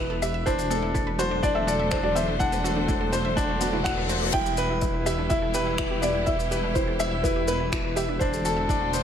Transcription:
0.00 0.44 E1 medium
0.00 0.46 E3 medium
0.00 0.46 B3 medium
0.00 0.49 E4 loud
0.00 0.46 G4 medium
0.00 0.46 B4 medium
0.00 0.48 B4 loud
0.00 0.49 B4 loud
0.00 0.22 E5 loud
0.10 0.15 A4 medium
0.22 0.30 G4 medium
0.22 0.45 E5 loud
0.22 shaker medium
0.34 0.42 E5 medium
0.46 4.31 E1 medium
0.46 4.34 D3 medium
0.46 0.69 D4 loud
0.46 0.54 E4 medium
0.46 1.46 C5 loud
0.46 kick loud
0.46 shaker medium
0.58 0.66 F#4 medium
0.58 shaker soft
0.70 4.34 A3 medium
0.70 0.82 B3 medium
0.70 0.94 A4 loud
0.70 shaker medium
0.82 0.91 E4 medium
0.94 1.18 D4 medium
0.94 1.00 E4 medium
0.94 kick loud
0.94 shaker medium
1.07 1.18 B4 medium
1.11 5.13 F#3 medium
1.19 1.30 F#4 medium
1.19 1.33 C5 loud
1.19 shaker medium
1.31 1.36 D4 medium
1.31 4.34 C5 medium
1.43 1.66 D4 loud
1.43 1.48 E4 medium
1.43 1.55 D5 loud
1.43 kick loud
1.43 shaker medium
1.55 1.60 A4 medium
1.55 1.68 E5 medium
1.67 1.75 F#4 medium
1.67 1.91 A4 loud
1.67 1.92 D5 medium
1.67 shaker medium
1.79 1.88 E5 medium
1.91 2.15 D4 medium
1.91 2.00 E4 medium
1.91 2.04 C5 loud
1.91 finger snap medium
1.91 kick loud
1.91 shaker medium
2.03 2.12 F#4 medium
2.03 2.15 D5 medium
2.15 2.27 B3 medium
2.15 2.39 C5 medium
2.15 2.41 E5 loud
2.15 shaker medium
2.28 2.36 E4 medium
2.39 2.63 D4 medium
2.39 2.45 E4 medium
2.39 3.82 F#5 loud
2.39 kick loud
2.39 shaker medium
2.52 2.64 B4 medium
2.52 shaker soft
2.64 2.76 F#4 loud
2.64 2.78 A4 medium
2.64 shaker medium
2.76 2.81 D4 medium
2.88 3.11 D4 medium
2.88 2.93 E4 medium
2.88 kick loud
2.88 shaker soft
3.01 3.05 A4 medium
3.13 3.21 F#4 medium
3.13 3.36 C5 loud
3.13 shaker medium
3.25 3.33 E5 medium
3.37 3.60 D4 loud
3.37 3.45 E4 medium
3.37 kick loud
3.37 reverse cymbal medium
3.37 shaker medium
3.49 3.57 F#4 medium
3.61 3.73 B3 medium
3.61 3.75 F#4 medium
3.61 shaker medium
3.73 3.81 E4 medium
3.84 3.90 E4 medium
3.84 4.08 F#4 medium
3.84 4.34 F#5 loud
3.84 finger snap medium
3.84 kick loud
3.84 shaker medium
3.97 4.09 B4 medium
4.09 4.21 F#4 loud
4.09 4.23 C5 medium
4.09 shaker medium
4.22 4.26 D4 medium
4.32 8.18 E1 medium
4.32 8.21 B2 medium
4.32 4.57 E4 loud
4.32 4.42 E4 medium
4.32 5.33 G5 loud
4.32 kick loud
4.32 crash medium
4.32 shaker medium
4.38 8.21 G3 medium
4.46 4.54 G4 medium
4.46 shaker medium
4.57 4.69 B3 medium
4.57 4.81 B4 loud
4.57 shaker medium
4.70 4.78 E4 medium
4.82 4.87 E4 medium
4.82 5.05 E4 medium
4.82 kick loud
4.82 shaker medium
4.87 8.86 E4 medium
4.94 5.06 B4 medium
5.03 8.21 G4 medium
5.03 5.18 G4 medium
5.03 5.20 E5 loud
5.03 shaker medium
5.18 5.23 D4 medium
5.29 5.35 E4 medium
5.29 5.53 E4 loud
5.29 6.05 E5 loud
5.29 kick loud
5.29 shaker medium
5.42 5.47 A4 medium
5.54 5.63 G4 medium
5.54 5.78 B4 loud
5.54 shaker medium
5.67 5.75 E5 medium
5.78 6.02 E4 medium
5.78 5.87 E4 medium
5.78 finger snap medium
5.78 kick loud
5.78 shaker medium
5.91 5.99 G4 medium
6.02 6.14 B3 medium
6.02 6.27 D5 medium
6.02 6.26 E5 medium
6.02 shaker medium
6.15 6.23 E4 medium
6.26 6.32 E4 medium
6.26 6.50 E4 medium
6.26 6.77 E5 loud
6.26 kick loud
6.26 shaker medium
6.39 6.51 B4 medium
6.39 shaker soft
6.51 6.63 G4 medium
6.51 6.65 B4 medium
6.51 shaker medium
6.63 6.68 D4 medium
6.74 6.80 E4 medium
6.74 6.98 E4 medium
6.74 7.25 C5 medium
6.74 kick loud
6.74 shaker medium
6.87 6.92 A4 medium
6.99 7.08 G4 medium
6.99 7.23 E5 loud
6.99 shaker medium
7.11 7.20 E5 medium
7.23 7.32 E4 medium
7.23 7.47 E4 loud
7.23 7.46 B4 medium
7.23 kick loud
7.23 shaker medium
7.36 7.44 G4 medium
7.47 7.60 B3 medium
7.47 7.93 B4 medium
7.47 7.71 B4 loud
7.47 shaker medium
7.60 7.68 E4 medium
7.72 7.77 E4 medium
7.72 7.96 E4 medium
7.72 finger snap medium
7.72 kick loud
7.72 shaker medium
7.84 7.96 B4 medium
7.96 8.08 G4 loud
7.96 8.10 E5 loud
7.96 shaker medium
8.08 8.13 D4 medium
8.19 9.03 E1 medium
8.19 9.03 D3 medium
8.19 8.44 D4 loud
8.19 8.25 E4 medium
8.19 9.03 C5 loud
8.19 kick loud
8.19 shaker medium
8.33 9.03 A3 medium
8.33 8.38 A4 medium
8.33 shaker soft
8.41 9.03 F#4 medium
8.41 8.53 F#4 medium
8.41 shaker medium
8.45 8.68 A4 loud
8.57 8.65 E5 medium
8.66 8.92 D4 loud
8.66 8.77 E4 medium
8.66 9.03 C5 medium
8.66 kick loud
8.70 shaker medium
8.81 8.89 F#4 medium
8.93 9.03 B3 medium
8.93 9.03 C5 medium
8.93 shaker medium

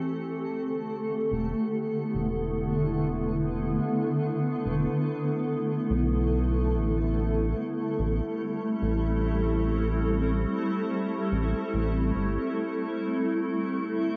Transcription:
0.00 14.17 A3 medium
0.00 1.78 G4 medium
0.00 14.17 A4 medium
0.07 6.74 D3 medium
0.40 6.74 B3 medium
0.69 14.17 E4 medium
1.32 1.54 E1 loud
2.15 3.79 E1 medium
4.66 4.87 E1 loud
5.90 6.75 B1 medium
6.74 7.54 A1 medium
6.74 13.41 G3 medium
7.40 13.41 C4 medium
7.99 8.21 A1 loud
8.82 10.46 A1 medium
11.32 11.54 A1 loud
11.74 12.12 A1 loud
12.16 12.37 G1 medium
13.41 14.17 D3 medium

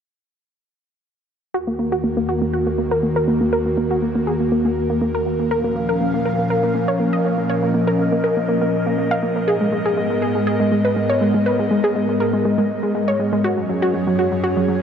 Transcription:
1.54 5.47 D#2 medium
1.54 5.47 D#3 medium
1.54 5.47 A#3 medium
1.54 5.47 F#4 medium
1.54 1.63 F#4 medium
1.54 13.40 A#4 medium
1.67 1.75 A#3 medium
1.79 1.88 A#3 medium
1.92 2.00 F#4 medium
2.04 2.13 A#3 medium
2.17 2.25 A#3 medium
2.29 2.38 F#4 medium
2.42 2.50 A#3 medium
2.53 2.62 F#4 medium
2.66 2.75 A#3 medium
2.78 2.87 A#3 medium
2.91 2.99 A#4 medium
3.03 3.12 A#3 medium
3.16 3.24 A#4 medium
3.28 3.37 A#3 medium
3.41 3.49 A#3 medium
3.53 3.62 A#4 medium
3.66 3.74 A#3 medium
3.78 3.87 A#3 medium
3.91 3.99 F#4 medium
4.02 4.11 A#3 medium
4.15 4.23 A#3 medium
4.27 4.36 G#4 medium
4.40 4.48 A#3 medium
4.52 4.61 A#3 medium
4.65 4.73 A#3 medium
4.90 4.98 A#3 medium
5.02 5.11 A#3 medium
5.15 5.23 A#4 medium
5.26 5.35 A#3 medium
5.39 5.47 A#3 medium
5.51 9.44 A#2 medium
5.51 9.44 F3 medium
5.51 9.44 C#4 medium
5.51 5.60 A#4 medium
5.51 7.47 F5 medium
5.64 5.72 A#3 medium
5.76 5.85 A#3 medium
5.89 5.97 A#4 medium
6.01 6.10 A#3 medium
6.14 6.22 A#3 medium
6.25 6.34 A#4 medium
6.39 6.47 A#3 medium
6.50 6.59 A#4 medium
6.63 6.71 A#3 medium
6.75 6.84 A#3 medium
6.88 6.96 C#5 medium
7.00 7.09 A#3 medium
7.13 7.21 D#5 medium
7.25 7.34 A#3 medium
7.38 7.46 A#3 medium
7.49 7.58 C#5 medium
7.49 13.40 D#5 medium
7.63 7.71 A#3 medium
7.74 7.83 A#3 medium
7.87 7.95 A#4 medium
7.99 8.08 A#3 medium
8.12 8.20 A#3 medium
8.24 8.33 A#4 medium
8.37 8.45 A#3 medium
8.49 8.58 A#3 medium
8.62 8.70 A#3 medium
8.86 8.95 A#3 medium
8.98 9.07 A#3 medium
9.11 9.19 F5 medium
9.23 9.32 A#3 medium
9.36 9.44 A#3 medium
9.48 13.40 G#2 medium
9.48 13.40 G#3 medium
9.48 13.40 B3 medium
9.48 9.57 G#4 medium
9.61 9.69 G#3 medium
9.72 9.82 G#3 medium
9.86 9.94 G#4 medium
9.97 10.06 G#3 medium
10.10 10.18 G#3 medium
10.22 10.31 G#4 medium
10.35 10.43 G#3 medium
10.47 10.56 G#4 medium
10.60 10.68 G#3 medium
10.72 10.81 G#3 medium
10.85 10.93 B4 medium
10.96 11.05 G#3 medium
11.10 11.18 C#5 medium
11.21 11.30 G#3 medium
11.34 11.42 G#3 medium
11.46 11.55 B4 medium
11.59 11.67 G#3 medium
11.71 11.80 G#3 medium
11.84 11.92 G#4 medium
11.96 12.05 G#3 medium
12.09 12.17 G#3 medium
12.20 12.29 A#4 medium
12.33 12.42 G#3 medium
12.45 12.54 G#3 medium
12.58 12.66 G#3 medium
12.83 12.91 G#3 medium
12.95 13.04 G#3 medium
13.08 13.16 C#5 medium
13.20 13.29 G#3 medium
13.33 13.41 G#3 medium
13.44 14.82 F#2 medium
13.44 14.82 F#3 medium
13.44 14.82 C#4 medium
13.44 13.53 F#4 medium
13.44 14.82 G#4 medium
13.44 14.82 C#5 medium
13.57 13.66 F#3 medium
13.69 13.78 F#3 medium
13.82 13.90 F#4 medium
13.94 14.03 F#3 medium
14.07 14.15 F#3 medium
14.19 14.28 F#4 medium
14.32 14.40 F#3 medium
14.44 14.53 F#4 medium
14.57 14.65 F#3 medium
14.68 14.77 F#3 medium

